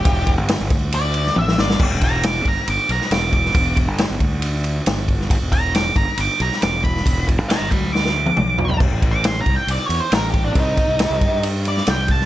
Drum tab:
CC |----------------|x---------------|----------------|----------------|
RD |x-x-x-x-x-x-----|--x-x-x-x-x-x-x-|x-x-x-x-x-x-x-x-|x-x-x-x-x-x-x-x-|
SD |----o------o-ooo|----o------oo--o|----o-------o--o|----o------oo--o|
T1 |------------o---|----------------|----------------|----------------|
T2 |----------------|----------------|----------------|----------------|
FT |----------------|----------------|----------------|----------------|
BD |o-o---o---------|o-o---o-------o-|o-o---o-------o-|o-o---o-------o-|

CC |----------------|x---------------|----------------|
RD |x-x-x-x---------|--x-x-x-x-x-x-x-|x-x-x-x-x-x-x-x-|
SD |----o---oo------|----o-------o---|----o------oo--o|
T1 |-----------o----|----------------|----------------|
T2 |------------o---|----------------|----------------|
FT |--------------oo|----------------|----------------|
BD |o-o---o---------|o-o---o-------o-|o-o---o-------o-|